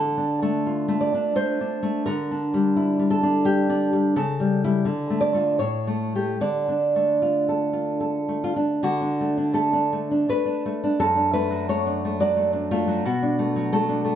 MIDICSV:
0, 0, Header, 1, 2, 480
1, 0, Start_track
1, 0, Key_signature, -1, "minor"
1, 0, Tempo, 728155
1, 915, Tempo, 696056
1, 1394, Time_signature, 3, 2, 24, 8
1, 2835, Tempo, 721154
1, 3795, Tempo, 805369
1, 5714, Key_signature, 2, "major"
1, 5715, Tempo, 726392
1, 6195, Tempo, 705882
1, 7635, Tempo, 674157
1, 9396, End_track
2, 0, Start_track
2, 0, Title_t, "Nylon-string guitar"
2, 0, Program_c, 0, 24
2, 0, Note_on_c, 0, 50, 43
2, 0, Note_on_c, 0, 69, 67
2, 115, Note_on_c, 0, 62, 33
2, 280, Note_on_c, 0, 57, 35
2, 435, Note_off_c, 0, 62, 0
2, 437, Note_on_c, 0, 65, 33
2, 574, Note_off_c, 0, 57, 0
2, 582, Note_on_c, 0, 57, 30
2, 647, Note_off_c, 0, 69, 0
2, 663, Note_on_c, 0, 74, 53
2, 751, Note_off_c, 0, 50, 0
2, 754, Note_on_c, 0, 62, 31
2, 886, Note_off_c, 0, 57, 0
2, 893, Note_on_c, 0, 57, 32
2, 896, Note_on_c, 0, 72, 58
2, 897, Note_off_c, 0, 74, 0
2, 1059, Note_off_c, 0, 62, 0
2, 1067, Note_on_c, 0, 62, 29
2, 1153, Note_off_c, 0, 65, 0
2, 1209, Note_off_c, 0, 57, 0
2, 1217, Note_on_c, 0, 57, 32
2, 1363, Note_off_c, 0, 72, 0
2, 1377, Note_on_c, 0, 70, 64
2, 1384, Note_on_c, 0, 50, 45
2, 1385, Note_off_c, 0, 57, 0
2, 1389, Note_off_c, 0, 62, 0
2, 1553, Note_on_c, 0, 62, 29
2, 1708, Note_on_c, 0, 55, 36
2, 1863, Note_on_c, 0, 64, 35
2, 2013, Note_off_c, 0, 55, 0
2, 2021, Note_on_c, 0, 55, 35
2, 2074, Note_off_c, 0, 70, 0
2, 2099, Note_on_c, 0, 69, 63
2, 2179, Note_off_c, 0, 62, 0
2, 2187, Note_on_c, 0, 62, 35
2, 2327, Note_off_c, 0, 55, 0
2, 2334, Note_off_c, 0, 69, 0
2, 2335, Note_on_c, 0, 55, 38
2, 2339, Note_on_c, 0, 67, 57
2, 2498, Note_off_c, 0, 62, 0
2, 2507, Note_on_c, 0, 62, 39
2, 2587, Note_off_c, 0, 64, 0
2, 2658, Note_off_c, 0, 55, 0
2, 2666, Note_on_c, 0, 55, 39
2, 2802, Note_off_c, 0, 50, 0
2, 2810, Note_off_c, 0, 67, 0
2, 2827, Note_on_c, 0, 49, 49
2, 2830, Note_on_c, 0, 69, 72
2, 2832, Note_off_c, 0, 55, 0
2, 2833, Note_off_c, 0, 62, 0
2, 2986, Note_on_c, 0, 55, 34
2, 3139, Note_off_c, 0, 55, 0
2, 3147, Note_on_c, 0, 55, 35
2, 3148, Note_on_c, 0, 64, 42
2, 3286, Note_on_c, 0, 50, 43
2, 3287, Note_off_c, 0, 49, 0
2, 3289, Note_off_c, 0, 55, 0
2, 3289, Note_off_c, 0, 64, 0
2, 3454, Note_on_c, 0, 57, 35
2, 3517, Note_off_c, 0, 69, 0
2, 3523, Note_on_c, 0, 74, 70
2, 3606, Note_off_c, 0, 57, 0
2, 3614, Note_on_c, 0, 57, 32
2, 3621, Note_on_c, 0, 65, 36
2, 3770, Note_off_c, 0, 50, 0
2, 3770, Note_off_c, 0, 57, 0
2, 3773, Note_off_c, 0, 74, 0
2, 3774, Note_off_c, 0, 65, 0
2, 3778, Note_on_c, 0, 73, 61
2, 3783, Note_on_c, 0, 45, 48
2, 3949, Note_on_c, 0, 57, 31
2, 4112, Note_off_c, 0, 57, 0
2, 4116, Note_on_c, 0, 67, 36
2, 4120, Note_on_c, 0, 57, 32
2, 4246, Note_off_c, 0, 73, 0
2, 4253, Note_off_c, 0, 45, 0
2, 4260, Note_off_c, 0, 67, 0
2, 4262, Note_off_c, 0, 57, 0
2, 4268, Note_on_c, 0, 50, 44
2, 4271, Note_on_c, 0, 74, 61
2, 4433, Note_on_c, 0, 62, 27
2, 4595, Note_on_c, 0, 57, 32
2, 4752, Note_on_c, 0, 65, 33
2, 4909, Note_off_c, 0, 74, 0
2, 4911, Note_on_c, 0, 69, 32
2, 5050, Note_off_c, 0, 65, 0
2, 5057, Note_on_c, 0, 65, 30
2, 5158, Note_off_c, 0, 62, 0
2, 5213, Note_off_c, 0, 69, 0
2, 5220, Note_on_c, 0, 69, 30
2, 5317, Note_off_c, 0, 57, 0
2, 5386, Note_on_c, 0, 57, 31
2, 5471, Note_off_c, 0, 65, 0
2, 5478, Note_on_c, 0, 65, 52
2, 5550, Note_off_c, 0, 65, 0
2, 5552, Note_on_c, 0, 62, 32
2, 5688, Note_off_c, 0, 50, 0
2, 5704, Note_off_c, 0, 69, 0
2, 5707, Note_off_c, 0, 57, 0
2, 5709, Note_off_c, 0, 62, 0
2, 5711, Note_on_c, 0, 50, 47
2, 5714, Note_on_c, 0, 66, 61
2, 5830, Note_on_c, 0, 62, 35
2, 5959, Note_on_c, 0, 57, 36
2, 6063, Note_off_c, 0, 62, 0
2, 6071, Note_on_c, 0, 62, 31
2, 6169, Note_off_c, 0, 57, 0
2, 6174, Note_off_c, 0, 66, 0
2, 6177, Note_on_c, 0, 57, 36
2, 6181, Note_on_c, 0, 69, 54
2, 6302, Note_off_c, 0, 62, 0
2, 6310, Note_on_c, 0, 62, 33
2, 6435, Note_off_c, 0, 57, 0
2, 6444, Note_on_c, 0, 57, 32
2, 6560, Note_off_c, 0, 62, 0
2, 6568, Note_on_c, 0, 62, 31
2, 6653, Note_off_c, 0, 69, 0
2, 6680, Note_off_c, 0, 57, 0
2, 6686, Note_off_c, 0, 50, 0
2, 6689, Note_on_c, 0, 57, 31
2, 6694, Note_on_c, 0, 71, 61
2, 6794, Note_off_c, 0, 62, 0
2, 6802, Note_on_c, 0, 62, 34
2, 6930, Note_off_c, 0, 57, 0
2, 6938, Note_on_c, 0, 57, 38
2, 7053, Note_off_c, 0, 62, 0
2, 7061, Note_on_c, 0, 62, 36
2, 7149, Note_off_c, 0, 71, 0
2, 7169, Note_off_c, 0, 57, 0
2, 7170, Note_off_c, 0, 62, 0
2, 7171, Note_on_c, 0, 42, 47
2, 7171, Note_on_c, 0, 69, 66
2, 7281, Note_on_c, 0, 62, 34
2, 7393, Note_off_c, 0, 69, 0
2, 7400, Note_on_c, 0, 71, 65
2, 7404, Note_on_c, 0, 57, 36
2, 7516, Note_on_c, 0, 54, 35
2, 7625, Note_off_c, 0, 71, 0
2, 7632, Note_off_c, 0, 57, 0
2, 7640, Note_on_c, 0, 57, 36
2, 7643, Note_on_c, 0, 73, 64
2, 7759, Note_off_c, 0, 62, 0
2, 7768, Note_on_c, 0, 62, 35
2, 7889, Note_off_c, 0, 57, 0
2, 7897, Note_on_c, 0, 57, 34
2, 7991, Note_off_c, 0, 73, 0
2, 7998, Note_off_c, 0, 54, 0
2, 8006, Note_on_c, 0, 54, 33
2, 8009, Note_on_c, 0, 74, 56
2, 8114, Note_off_c, 0, 57, 0
2, 8122, Note_on_c, 0, 57, 32
2, 8231, Note_off_c, 0, 62, 0
2, 8239, Note_on_c, 0, 62, 37
2, 8349, Note_off_c, 0, 74, 0
2, 8360, Note_off_c, 0, 57, 0
2, 8369, Note_on_c, 0, 57, 41
2, 8370, Note_on_c, 0, 65, 61
2, 8477, Note_off_c, 0, 54, 0
2, 8486, Note_on_c, 0, 54, 39
2, 8574, Note_off_c, 0, 42, 0
2, 8592, Note_off_c, 0, 65, 0
2, 8596, Note_off_c, 0, 62, 0
2, 8601, Note_off_c, 0, 54, 0
2, 8602, Note_off_c, 0, 57, 0
2, 8613, Note_on_c, 0, 47, 48
2, 8617, Note_on_c, 0, 66, 69
2, 8735, Note_on_c, 0, 62, 33
2, 8851, Note_on_c, 0, 57, 40
2, 8972, Note_on_c, 0, 54, 36
2, 9065, Note_off_c, 0, 66, 0
2, 9088, Note_off_c, 0, 57, 0
2, 9093, Note_on_c, 0, 69, 70
2, 9096, Note_on_c, 0, 57, 37
2, 9200, Note_off_c, 0, 62, 0
2, 9208, Note_on_c, 0, 62, 32
2, 9309, Note_off_c, 0, 57, 0
2, 9318, Note_on_c, 0, 57, 37
2, 9396, Note_off_c, 0, 47, 0
2, 9396, Note_off_c, 0, 54, 0
2, 9396, Note_off_c, 0, 57, 0
2, 9396, Note_off_c, 0, 62, 0
2, 9396, Note_off_c, 0, 69, 0
2, 9396, End_track
0, 0, End_of_file